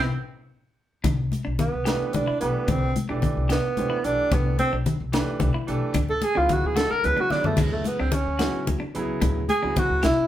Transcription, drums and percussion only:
1.04 kick, closed hi-hat, muted conga, low conga
1.32 closed hi-hat, high conga
1.59 closed hi-hat, low conga
1.86 snare, closed hi-hat, muted conga, low conga
2.13 closed hi-hat, high conga, low conga
2.41 closed hi-hat
2.68 kick, closed hi-hat, muted conga, low conga
2.96 closed hi-hat, high conga
3.22 kick, closed hi-hat, low conga
3.50 snare, closed hi-hat, muted conga, low conga
3.77 closed hi-hat, high conga
4.04 closed hi-hat
4.32 kick, closed hi-hat, muted conga, low conga
4.59 closed hi-hat, high conga
4.86 closed hi-hat, low conga
5.13 snare, closed hi-hat, muted conga, low conga
5.40 closed hi-hat, high conga, low conga
5.68 closed hi-hat
5.94 kick, closed hi-hat, muted conga, low conga
6.09 low conga
6.22 closed hi-hat, high conga
6.49 kick, closed hi-hat, low conga
6.77 snare, closed hi-hat, muted conga
6.90 high conga
7.04 closed hi-hat, high conga
7.17 high conga
7.30 snare, low conga
7.44 floor tom, low conga
7.57 kick, closed hi-hat, crash, muted conga, low conga
7.84 closed hi-hat, high conga
8.12 closed hi-hat, low conga
8.39 snare, closed hi-hat, muted conga, low conga
8.67 closed hi-hat, high conga, low conga
8.95 closed hi-hat
9.22 kick, closed hi-hat, muted conga, low conga
9.49 closed hi-hat, high conga
9.76 kick, closed hi-hat, low conga
10.03 snare, closed hi-hat, muted conga, low conga

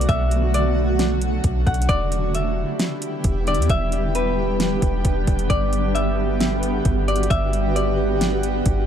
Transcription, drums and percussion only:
0.01 closed hi-hat
0.09 kick, closed hi-hat
0.31 closed hi-hat
0.54 closed hi-hat
0.99 snare, closed hi-hat
1.22 closed hi-hat
1.44 kick, closed hi-hat
1.67 kick, closed hi-hat
1.74 closed hi-hat
1.82 closed hi-hat
1.89 kick, closed hi-hat
2.12 closed hi-hat
2.35 closed hi-hat
2.79 snare, closed hi-hat
3.02 closed hi-hat
3.24 kick, closed hi-hat
3.47 closed hi-hat
3.54 closed hi-hat
3.62 closed hi-hat
3.70 kick, closed hi-hat
3.92 closed hi-hat
4.15 closed hi-hat
4.60 snare, closed hi-hat
4.82 kick, closed hi-hat
5.05 kick, closed hi-hat
5.27 kick, closed hi-hat
5.39 closed hi-hat
5.50 kick, closed hi-hat
5.73 closed hi-hat
5.95 closed hi-hat
6.40 snare, closed hi-hat
6.63 closed hi-hat
6.85 kick, closed hi-hat
7.08 closed hi-hat
7.16 closed hi-hat
7.23 closed hi-hat
7.31 kick, closed hi-hat
7.53 closed hi-hat
7.76 closed hi-hat
8.21 snare, closed hi-hat
8.43 closed hi-hat
8.66 kick, closed hi-hat

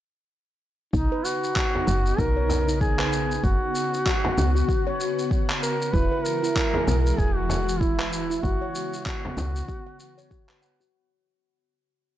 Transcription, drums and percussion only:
0.93 kick, shaker
1.25 shaker
1.44 shaker
1.56 kick, clap, shaker
1.75 frame drum
1.87 frame drum, shaker
2.06 shaker
2.19 kick, shaker
2.49 frame drum, shaker
2.69 shaker
2.81 kick, shaker
2.99 clap
3.13 shaker
3.31 shaker
3.44 kick, shaker
3.75 shaker
3.94 shaker
4.06 kick, clap, shaker
4.25 frame drum
4.38 frame drum, shaker
4.56 shaker
4.69 kick, shaker
5.00 shaker
5.19 shaker
5.31 kick, shaker
5.50 clap
5.63 shaker
5.82 shaker
5.93 kick, shaker
6.25 shaker
6.44 shaker
6.56 kick, clap, shaker
6.74 frame drum
6.88 frame drum, shaker
7.06 shaker
7.18 kick, shaker
7.49 frame drum, shaker
7.69 shaker
7.81 kick, shaker
8.00 clap
8.13 shaker
8.31 shaker
8.43 kick, shaker
8.75 shaker
8.93 shaker
9.06 kick, clap, shaker
9.25 frame drum
9.38 frame drum, shaker
9.56 shaker
9.68 kick, shaker
10.00 shaker
10.18 shaker
10.31 kick, shaker
10.49 clap
10.62 shaker
10.81 shaker

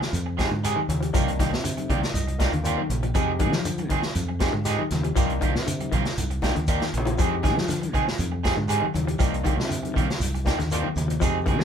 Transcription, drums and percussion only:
0.02 snare
0.13 closed hi-hat, shekere
0.39 kick, snare, closed hi-hat, high conga, shekere
0.64 closed hi-hat, shekere
0.76 high conga
0.89 closed hi-hat, low conga, shekere
1.02 closed hi-hat
1.14 kick, closed hi-hat, low conga, shekere
1.28 closed hi-hat
1.39 kick, snare, closed hi-hat, high conga, low conga, shekere
1.53 snare
1.64 closed hi-hat, shekere
1.77 closed hi-hat, high conga
1.90 kick, closed hi-hat, low conga, shekere
2.03 snare, closed hi-hat
2.15 closed hi-hat, high conga, shekere
2.28 closed hi-hat
2.39 kick, snare, closed hi-hat, high conga, shekere
2.53 closed hi-hat
2.65 closed hi-hat, shekere
2.78 high conga
2.90 closed hi-hat, low conga, shekere
3.03 closed hi-hat
3.15 kick, closed hi-hat, low conga, shekere
3.39 kick, closed hi-hat, high conga, low conga, shekere
3.52 snare, high conga
3.65 closed hi-hat, shekere
3.78 closed hi-hat, high conga
3.90 kick, closed hi-hat, low conga, shekere
4.03 snare
4.15 closed hi-hat, high conga, shekere
4.40 kick, snare, closed hi-hat, high conga, shekere
4.65 snare, closed hi-hat, shekere
4.79 high conga
4.91 snare, closed hi-hat, high conga, low conga, shekere
5.04 closed hi-hat
5.16 kick, closed hi-hat, shekere
5.30 closed hi-hat
5.41 kick, closed hi-hat, high conga, low conga, shekere
5.55 snare
5.67 closed hi-hat, shekere
5.80 closed hi-hat, high conga
5.92 kick, closed hi-hat, low conga, shekere
6.05 snare, closed hi-hat
6.17 closed hi-hat, high conga, shekere
6.31 closed hi-hat
6.42 kick, snare, closed hi-hat, high conga, shekere
6.56 closed hi-hat
6.67 kick, closed hi-hat, shekere
6.80 snare, high conga
6.93 closed hi-hat, shekere
6.97 low conga
7.05 closed hi-hat, low conga
7.18 kick, closed hi-hat, shekere
7.43 kick, snare, closed hi-hat, high conga, low conga, shekere
7.56 snare, high conga
7.68 snare, closed hi-hat, shekere
7.81 closed hi-hat, high conga
7.93 kick, closed hi-hat, low conga, shekere
8.08 snare
8.18 closed hi-hat, high conga, shekere
8.44 kick, snare, closed hi-hat, high conga, shekere
8.68 closed hi-hat, shekere
8.83 high conga
8.94 closed hi-hat, high conga, low conga, shekere
9.08 closed hi-hat
9.19 kick, closed hi-hat, shekere
9.34 closed hi-hat
9.45 kick, closed hi-hat, high conga, low conga, shekere
9.59 snare, high conga
9.70 closed hi-hat, shekere
9.84 closed hi-hat, high conga
9.95 kick, closed hi-hat, low conga, shekere
10.10 snare, closed hi-hat
10.20 closed hi-hat, high conga, shekere
10.35 closed hi-hat
10.46 kick, snare, closed hi-hat, high conga, shekere
10.59 snare, closed hi-hat
10.71 closed hi-hat, shekere
10.84 high conga
10.96 closed hi-hat, low conga, shekere
11.10 closed hi-hat
11.21 kick, closed hi-hat, low conga, shekere
11.46 kick, closed hi-hat, high conga, low conga, shekere
11.59 snare, high conga

